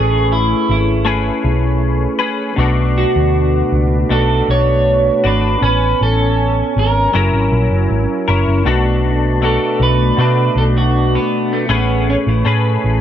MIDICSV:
0, 0, Header, 1, 5, 480
1, 0, Start_track
1, 0, Tempo, 759686
1, 1634, Time_signature, 4, 2, 24, 8
1, 8220, End_track
2, 0, Start_track
2, 0, Title_t, "Clean electric guitar"
2, 0, Program_c, 0, 27
2, 0, Note_on_c, 0, 68, 91
2, 203, Note_off_c, 0, 68, 0
2, 205, Note_on_c, 0, 64, 90
2, 443, Note_off_c, 0, 64, 0
2, 451, Note_on_c, 0, 64, 73
2, 1377, Note_off_c, 0, 64, 0
2, 1881, Note_on_c, 0, 66, 96
2, 2572, Note_off_c, 0, 66, 0
2, 2602, Note_on_c, 0, 69, 84
2, 2845, Note_off_c, 0, 69, 0
2, 2848, Note_on_c, 0, 73, 111
2, 3326, Note_off_c, 0, 73, 0
2, 3328, Note_on_c, 0, 71, 81
2, 3557, Note_off_c, 0, 71, 0
2, 3565, Note_on_c, 0, 71, 92
2, 3806, Note_off_c, 0, 71, 0
2, 3810, Note_on_c, 0, 69, 94
2, 4256, Note_off_c, 0, 69, 0
2, 4291, Note_on_c, 0, 70, 83
2, 4977, Note_off_c, 0, 70, 0
2, 5969, Note_on_c, 0, 69, 86
2, 6208, Note_off_c, 0, 69, 0
2, 6210, Note_on_c, 0, 71, 101
2, 6436, Note_off_c, 0, 71, 0
2, 6444, Note_on_c, 0, 71, 82
2, 6682, Note_off_c, 0, 71, 0
2, 6685, Note_on_c, 0, 69, 99
2, 6716, Note_off_c, 0, 69, 0
2, 6809, Note_on_c, 0, 66, 80
2, 7047, Note_on_c, 0, 59, 82
2, 7048, Note_off_c, 0, 66, 0
2, 7285, Note_on_c, 0, 57, 82
2, 7287, Note_off_c, 0, 59, 0
2, 7399, Note_on_c, 0, 59, 95
2, 7402, Note_off_c, 0, 57, 0
2, 7642, Note_off_c, 0, 59, 0
2, 7644, Note_on_c, 0, 61, 94
2, 7676, Note_off_c, 0, 61, 0
2, 7762, Note_on_c, 0, 64, 75
2, 8220, Note_off_c, 0, 64, 0
2, 8220, End_track
3, 0, Start_track
3, 0, Title_t, "Tonewheel organ"
3, 0, Program_c, 1, 16
3, 0, Note_on_c, 1, 57, 58
3, 0, Note_on_c, 1, 61, 54
3, 0, Note_on_c, 1, 68, 59
3, 0, Note_on_c, 1, 71, 64
3, 1598, Note_off_c, 1, 57, 0
3, 1604, Note_off_c, 1, 61, 0
3, 1606, Note_on_c, 1, 57, 68
3, 1609, Note_off_c, 1, 68, 0
3, 1614, Note_off_c, 1, 71, 0
3, 1618, Note_on_c, 1, 62, 68
3, 1627, Note_on_c, 1, 66, 60
3, 1638, Note_on_c, 1, 71, 78
3, 3515, Note_off_c, 1, 57, 0
3, 3520, Note_off_c, 1, 62, 0
3, 3525, Note_off_c, 1, 66, 0
3, 3530, Note_off_c, 1, 71, 0
3, 3538, Note_on_c, 1, 59, 58
3, 3546, Note_on_c, 1, 61, 56
3, 3558, Note_on_c, 1, 80, 55
3, 3568, Note_on_c, 1, 73, 69
3, 4486, Note_off_c, 1, 59, 0
3, 4490, Note_off_c, 1, 61, 0
3, 4496, Note_off_c, 1, 80, 0
3, 4498, Note_on_c, 1, 54, 66
3, 4502, Note_off_c, 1, 73, 0
3, 4507, Note_on_c, 1, 61, 57
3, 4518, Note_on_c, 1, 64, 53
3, 4528, Note_on_c, 1, 68, 55
3, 4562, Note_off_c, 1, 68, 0
3, 4572, Note_on_c, 1, 70, 68
3, 5446, Note_off_c, 1, 54, 0
3, 5450, Note_off_c, 1, 61, 0
3, 5456, Note_off_c, 1, 64, 0
3, 5456, Note_on_c, 1, 57, 68
3, 5468, Note_on_c, 1, 62, 67
3, 5477, Note_on_c, 1, 66, 65
3, 5484, Note_off_c, 1, 70, 0
3, 5488, Note_on_c, 1, 71, 71
3, 7359, Note_off_c, 1, 57, 0
3, 7364, Note_off_c, 1, 62, 0
3, 7369, Note_off_c, 1, 66, 0
3, 7372, Note_on_c, 1, 57, 61
3, 7375, Note_off_c, 1, 71, 0
3, 7381, Note_on_c, 1, 61, 51
3, 7393, Note_on_c, 1, 68, 55
3, 7402, Note_on_c, 1, 71, 67
3, 8220, Note_off_c, 1, 57, 0
3, 8220, Note_off_c, 1, 61, 0
3, 8220, Note_off_c, 1, 68, 0
3, 8220, Note_off_c, 1, 71, 0
3, 8220, End_track
4, 0, Start_track
4, 0, Title_t, "Clean electric guitar"
4, 0, Program_c, 2, 27
4, 0, Note_on_c, 2, 57, 84
4, 0, Note_on_c, 2, 61, 73
4, 0, Note_on_c, 2, 68, 68
4, 0, Note_on_c, 2, 71, 80
4, 660, Note_off_c, 2, 57, 0
4, 661, Note_off_c, 2, 61, 0
4, 662, Note_on_c, 2, 57, 58
4, 665, Note_off_c, 2, 68, 0
4, 669, Note_on_c, 2, 61, 61
4, 672, Note_on_c, 2, 68, 67
4, 675, Note_off_c, 2, 71, 0
4, 677, Note_on_c, 2, 71, 61
4, 1379, Note_off_c, 2, 71, 0
4, 1380, Note_off_c, 2, 68, 0
4, 1382, Note_on_c, 2, 71, 57
4, 1387, Note_off_c, 2, 61, 0
4, 1388, Note_on_c, 2, 68, 53
4, 1394, Note_on_c, 2, 61, 52
4, 1401, Note_off_c, 2, 57, 0
4, 1620, Note_on_c, 2, 47, 96
4, 1628, Note_off_c, 2, 71, 0
4, 1631, Note_off_c, 2, 68, 0
4, 1632, Note_on_c, 2, 57, 77
4, 1634, Note_off_c, 2, 61, 0
4, 1637, Note_on_c, 2, 62, 90
4, 1644, Note_on_c, 2, 66, 96
4, 2579, Note_off_c, 2, 47, 0
4, 2587, Note_on_c, 2, 47, 53
4, 2590, Note_off_c, 2, 62, 0
4, 2591, Note_off_c, 2, 57, 0
4, 2594, Note_on_c, 2, 57, 51
4, 2596, Note_off_c, 2, 66, 0
4, 2598, Note_on_c, 2, 62, 61
4, 2603, Note_on_c, 2, 66, 64
4, 3301, Note_off_c, 2, 66, 0
4, 3308, Note_off_c, 2, 62, 0
4, 3309, Note_on_c, 2, 66, 51
4, 3310, Note_off_c, 2, 47, 0
4, 3314, Note_off_c, 2, 57, 0
4, 3316, Note_on_c, 2, 62, 48
4, 3324, Note_on_c, 2, 57, 41
4, 3551, Note_off_c, 2, 62, 0
4, 3551, Note_off_c, 2, 66, 0
4, 3554, Note_on_c, 2, 61, 74
4, 3559, Note_off_c, 2, 57, 0
4, 4509, Note_off_c, 2, 61, 0
4, 4509, Note_on_c, 2, 54, 54
4, 4517, Note_on_c, 2, 61, 61
4, 4518, Note_on_c, 2, 64, 54
4, 4525, Note_on_c, 2, 70, 61
4, 5222, Note_off_c, 2, 70, 0
4, 5229, Note_on_c, 2, 70, 51
4, 5230, Note_off_c, 2, 64, 0
4, 5235, Note_off_c, 2, 61, 0
4, 5238, Note_on_c, 2, 64, 58
4, 5244, Note_on_c, 2, 61, 43
4, 5257, Note_off_c, 2, 54, 0
4, 5468, Note_on_c, 2, 47, 86
4, 5471, Note_off_c, 2, 70, 0
4, 5473, Note_off_c, 2, 61, 0
4, 5474, Note_on_c, 2, 57, 82
4, 5475, Note_off_c, 2, 64, 0
4, 5475, Note_on_c, 2, 62, 88
4, 5482, Note_on_c, 2, 66, 99
4, 5938, Note_off_c, 2, 47, 0
4, 5946, Note_on_c, 2, 47, 52
4, 5949, Note_off_c, 2, 62, 0
4, 5950, Note_off_c, 2, 57, 0
4, 5952, Note_on_c, 2, 57, 66
4, 5956, Note_off_c, 2, 66, 0
4, 5956, Note_on_c, 2, 62, 55
4, 5963, Note_on_c, 2, 66, 63
4, 6415, Note_off_c, 2, 47, 0
4, 6423, Note_on_c, 2, 47, 54
4, 6433, Note_off_c, 2, 57, 0
4, 6434, Note_off_c, 2, 62, 0
4, 6436, Note_on_c, 2, 57, 58
4, 6438, Note_off_c, 2, 66, 0
4, 6444, Note_on_c, 2, 62, 67
4, 6454, Note_on_c, 2, 66, 62
4, 7384, Note_off_c, 2, 57, 0
4, 7387, Note_off_c, 2, 47, 0
4, 7387, Note_on_c, 2, 57, 72
4, 7388, Note_off_c, 2, 62, 0
4, 7390, Note_on_c, 2, 61, 82
4, 7391, Note_off_c, 2, 66, 0
4, 7394, Note_on_c, 2, 68, 84
4, 7397, Note_on_c, 2, 71, 71
4, 7862, Note_off_c, 2, 57, 0
4, 7864, Note_off_c, 2, 61, 0
4, 7865, Note_on_c, 2, 57, 60
4, 7867, Note_off_c, 2, 68, 0
4, 7871, Note_on_c, 2, 61, 60
4, 7875, Note_on_c, 2, 68, 62
4, 7879, Note_off_c, 2, 71, 0
4, 7881, Note_on_c, 2, 71, 68
4, 8220, Note_off_c, 2, 57, 0
4, 8220, Note_off_c, 2, 61, 0
4, 8220, Note_off_c, 2, 68, 0
4, 8220, Note_off_c, 2, 71, 0
4, 8220, End_track
5, 0, Start_track
5, 0, Title_t, "Picked electric bass"
5, 0, Program_c, 3, 34
5, 0, Note_on_c, 3, 33, 86
5, 334, Note_off_c, 3, 33, 0
5, 437, Note_on_c, 3, 32, 81
5, 820, Note_off_c, 3, 32, 0
5, 913, Note_on_c, 3, 35, 93
5, 1297, Note_off_c, 3, 35, 0
5, 1631, Note_on_c, 3, 35, 102
5, 1920, Note_off_c, 3, 35, 0
5, 1996, Note_on_c, 3, 38, 82
5, 2283, Note_off_c, 3, 38, 0
5, 2352, Note_on_c, 3, 37, 76
5, 2545, Note_off_c, 3, 37, 0
5, 2590, Note_on_c, 3, 35, 84
5, 2784, Note_off_c, 3, 35, 0
5, 2833, Note_on_c, 3, 35, 75
5, 3217, Note_off_c, 3, 35, 0
5, 3315, Note_on_c, 3, 32, 82
5, 3506, Note_off_c, 3, 32, 0
5, 3552, Note_on_c, 3, 33, 100
5, 3745, Note_off_c, 3, 33, 0
5, 3797, Note_on_c, 3, 33, 85
5, 4179, Note_off_c, 3, 33, 0
5, 4274, Note_on_c, 3, 32, 91
5, 4466, Note_off_c, 3, 32, 0
5, 4516, Note_on_c, 3, 30, 86
5, 4611, Note_off_c, 3, 30, 0
5, 4631, Note_on_c, 3, 32, 68
5, 4728, Note_off_c, 3, 32, 0
5, 4751, Note_on_c, 3, 34, 80
5, 4848, Note_off_c, 3, 34, 0
5, 4870, Note_on_c, 3, 30, 82
5, 4967, Note_off_c, 3, 30, 0
5, 4993, Note_on_c, 3, 32, 86
5, 5089, Note_off_c, 3, 32, 0
5, 5235, Note_on_c, 3, 30, 83
5, 5330, Note_off_c, 3, 30, 0
5, 5354, Note_on_c, 3, 30, 76
5, 5450, Note_off_c, 3, 30, 0
5, 5471, Note_on_c, 3, 35, 104
5, 6047, Note_off_c, 3, 35, 0
5, 6191, Note_on_c, 3, 35, 84
5, 6383, Note_off_c, 3, 35, 0
5, 6433, Note_on_c, 3, 47, 83
5, 6625, Note_off_c, 3, 47, 0
5, 6669, Note_on_c, 3, 35, 89
5, 7054, Note_off_c, 3, 35, 0
5, 7389, Note_on_c, 3, 33, 97
5, 7678, Note_off_c, 3, 33, 0
5, 7751, Note_on_c, 3, 33, 83
5, 7848, Note_off_c, 3, 33, 0
5, 7871, Note_on_c, 3, 45, 82
5, 8063, Note_off_c, 3, 45, 0
5, 8114, Note_on_c, 3, 33, 90
5, 8220, Note_off_c, 3, 33, 0
5, 8220, End_track
0, 0, End_of_file